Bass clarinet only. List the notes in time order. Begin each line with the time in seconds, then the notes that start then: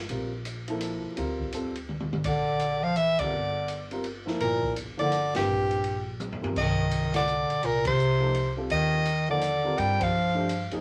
2.26 D3
2.83 F3
2.97 E3
3.19 D3
4.41 A#2
4.99 D3
5.35 G2
6.57 D#3
7.14 D3
7.63 A#2
7.86 C3
8.71 D#3
9.30 D3
9.78 G3
10.01 F3